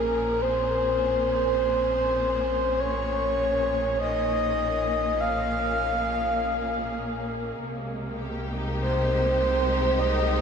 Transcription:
0, 0, Header, 1, 4, 480
1, 0, Start_track
1, 0, Tempo, 1200000
1, 158, Time_signature, 3, 2, 24, 8
1, 4165, End_track
2, 0, Start_track
2, 0, Title_t, "Soft synth lead"
2, 0, Program_c, 0, 80
2, 0, Note_on_c, 0, 70, 75
2, 166, Note_on_c, 0, 72, 94
2, 172, Note_off_c, 0, 70, 0
2, 1120, Note_on_c, 0, 73, 97
2, 1126, Note_off_c, 0, 72, 0
2, 1593, Note_off_c, 0, 73, 0
2, 1596, Note_on_c, 0, 75, 99
2, 2082, Note_on_c, 0, 77, 102
2, 2088, Note_off_c, 0, 75, 0
2, 2800, Note_off_c, 0, 77, 0
2, 3525, Note_on_c, 0, 72, 87
2, 3996, Note_on_c, 0, 75, 95
2, 4002, Note_off_c, 0, 72, 0
2, 4165, Note_off_c, 0, 75, 0
2, 4165, End_track
3, 0, Start_track
3, 0, Title_t, "String section"
3, 0, Program_c, 1, 48
3, 0, Note_on_c, 1, 46, 74
3, 0, Note_on_c, 1, 58, 63
3, 0, Note_on_c, 1, 61, 68
3, 0, Note_on_c, 1, 68, 58
3, 3038, Note_off_c, 1, 68, 0
3, 3039, Note_off_c, 1, 46, 0
3, 3039, Note_on_c, 1, 48, 66
3, 3041, Note_off_c, 1, 61, 0
3, 3104, Note_on_c, 1, 56, 64
3, 3249, Note_on_c, 1, 67, 69
3, 3393, Note_on_c, 1, 63, 73
3, 4165, Note_off_c, 1, 48, 0
3, 4165, Note_off_c, 1, 56, 0
3, 4165, Note_off_c, 1, 58, 0
3, 4165, Note_off_c, 1, 63, 0
3, 4165, Note_off_c, 1, 67, 0
3, 4165, End_track
4, 0, Start_track
4, 0, Title_t, "Sub bass"
4, 0, Program_c, 2, 38
4, 0, Note_on_c, 2, 34, 73
4, 3014, Note_off_c, 2, 34, 0
4, 3038, Note_on_c, 2, 36, 75
4, 4165, Note_off_c, 2, 36, 0
4, 4165, End_track
0, 0, End_of_file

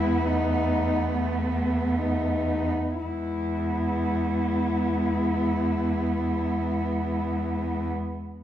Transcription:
0, 0, Header, 1, 5, 480
1, 0, Start_track
1, 0, Key_signature, 4, "major"
1, 0, Tempo, 500000
1, 8097, End_track
2, 0, Start_track
2, 0, Title_t, "Cello"
2, 0, Program_c, 0, 42
2, 0, Note_on_c, 0, 64, 49
2, 250, Note_on_c, 0, 63, 47
2, 265, Note_off_c, 0, 64, 0
2, 1029, Note_off_c, 0, 63, 0
2, 1041, Note_on_c, 0, 59, 38
2, 1901, Note_on_c, 0, 63, 33
2, 1915, Note_off_c, 0, 59, 0
2, 2889, Note_off_c, 0, 63, 0
2, 2895, Note_on_c, 0, 64, 35
2, 7558, Note_off_c, 0, 64, 0
2, 8097, End_track
3, 0, Start_track
3, 0, Title_t, "Cello"
3, 0, Program_c, 1, 42
3, 0, Note_on_c, 1, 59, 36
3, 2587, Note_off_c, 1, 59, 0
3, 2915, Note_on_c, 1, 59, 23
3, 7579, Note_off_c, 1, 59, 0
3, 8097, End_track
4, 0, Start_track
4, 0, Title_t, "Cello"
4, 0, Program_c, 2, 42
4, 0, Note_on_c, 2, 56, 39
4, 216, Note_off_c, 2, 56, 0
4, 252, Note_on_c, 2, 57, 34
4, 2586, Note_off_c, 2, 57, 0
4, 2903, Note_on_c, 2, 56, 26
4, 7566, Note_off_c, 2, 56, 0
4, 8097, End_track
5, 0, Start_track
5, 0, Title_t, "Cello"
5, 0, Program_c, 3, 42
5, 0, Note_on_c, 3, 40, 37
5, 2589, Note_off_c, 3, 40, 0
5, 2910, Note_on_c, 3, 40, 24
5, 7573, Note_off_c, 3, 40, 0
5, 8097, End_track
0, 0, End_of_file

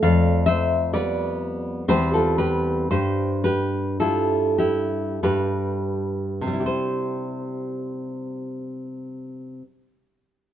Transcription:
0, 0, Header, 1, 2, 480
1, 0, Start_track
1, 0, Key_signature, 0, "major"
1, 0, Tempo, 888889
1, 18, Time_signature, 3, 2, 24, 8
1, 499, Tempo, 949367
1, 979, Tempo, 1022147
1, 1459, Tempo, 1094891
1, 1939, Tempo, 1226994
1, 2419, Tempo, 1435407
1, 2899, Tempo, 1310044
1, 4321, End_track
2, 0, Start_track
2, 0, Title_t, "Nylon-string guitar"
2, 0, Program_c, 0, 24
2, 14, Note_on_c, 0, 77, 98
2, 17, Note_on_c, 0, 41, 65
2, 20, Note_on_c, 0, 74, 66
2, 239, Note_off_c, 0, 74, 0
2, 243, Note_off_c, 0, 77, 0
2, 249, Note_on_c, 0, 76, 100
2, 258, Note_on_c, 0, 72, 69
2, 484, Note_off_c, 0, 72, 0
2, 486, Note_off_c, 0, 76, 0
2, 503, Note_on_c, 0, 55, 49
2, 505, Note_on_c, 0, 74, 82
2, 507, Note_on_c, 0, 59, 52
2, 510, Note_on_c, 0, 71, 64
2, 958, Note_off_c, 0, 41, 0
2, 961, Note_off_c, 0, 55, 0
2, 962, Note_off_c, 0, 74, 0
2, 963, Note_off_c, 0, 59, 0
2, 964, Note_off_c, 0, 71, 0
2, 983, Note_on_c, 0, 55, 46
2, 983, Note_on_c, 0, 60, 46
2, 984, Note_on_c, 0, 40, 65
2, 985, Note_on_c, 0, 72, 88
2, 986, Note_off_c, 0, 55, 0
2, 986, Note_on_c, 0, 55, 47
2, 989, Note_on_c, 0, 67, 64
2, 990, Note_off_c, 0, 60, 0
2, 990, Note_on_c, 0, 60, 47
2, 1092, Note_off_c, 0, 67, 0
2, 1096, Note_off_c, 0, 72, 0
2, 1102, Note_on_c, 0, 69, 71
2, 1109, Note_on_c, 0, 65, 56
2, 1213, Note_off_c, 0, 65, 0
2, 1217, Note_off_c, 0, 69, 0
2, 1217, Note_on_c, 0, 71, 81
2, 1224, Note_on_c, 0, 67, 59
2, 1444, Note_off_c, 0, 55, 0
2, 1444, Note_off_c, 0, 60, 0
2, 1447, Note_off_c, 0, 67, 0
2, 1448, Note_off_c, 0, 40, 0
2, 1451, Note_off_c, 0, 71, 0
2, 1463, Note_on_c, 0, 43, 59
2, 1464, Note_on_c, 0, 72, 71
2, 1468, Note_on_c, 0, 67, 58
2, 1683, Note_off_c, 0, 67, 0
2, 1687, Note_off_c, 0, 72, 0
2, 1697, Note_on_c, 0, 71, 75
2, 1702, Note_on_c, 0, 67, 58
2, 1926, Note_off_c, 0, 67, 0
2, 1931, Note_off_c, 0, 71, 0
2, 1942, Note_on_c, 0, 69, 70
2, 1943, Note_on_c, 0, 55, 43
2, 1946, Note_on_c, 0, 64, 48
2, 1948, Note_on_c, 0, 65, 53
2, 2157, Note_off_c, 0, 65, 0
2, 2162, Note_off_c, 0, 69, 0
2, 2171, Note_off_c, 0, 64, 0
2, 2171, Note_on_c, 0, 67, 58
2, 2176, Note_on_c, 0, 64, 52
2, 2405, Note_off_c, 0, 43, 0
2, 2405, Note_off_c, 0, 55, 0
2, 2406, Note_off_c, 0, 64, 0
2, 2410, Note_off_c, 0, 67, 0
2, 2423, Note_on_c, 0, 55, 36
2, 2423, Note_on_c, 0, 65, 39
2, 2424, Note_on_c, 0, 43, 52
2, 2424, Note_on_c, 0, 71, 60
2, 2425, Note_off_c, 0, 55, 0
2, 2425, Note_on_c, 0, 55, 38
2, 2427, Note_on_c, 0, 67, 46
2, 2430, Note_off_c, 0, 65, 0
2, 2819, Note_on_c, 0, 48, 48
2, 2834, Note_off_c, 0, 55, 0
2, 2838, Note_on_c, 0, 55, 41
2, 2859, Note_on_c, 0, 64, 39
2, 2877, Note_off_c, 0, 67, 0
2, 2880, Note_off_c, 0, 71, 0
2, 2881, Note_on_c, 0, 67, 39
2, 2889, Note_off_c, 0, 43, 0
2, 2900, Note_off_c, 0, 67, 0
2, 2902, Note_on_c, 0, 72, 49
2, 3985, Note_off_c, 0, 48, 0
2, 4006, Note_off_c, 0, 55, 0
2, 4029, Note_off_c, 0, 64, 0
2, 4076, Note_off_c, 0, 72, 0
2, 4321, End_track
0, 0, End_of_file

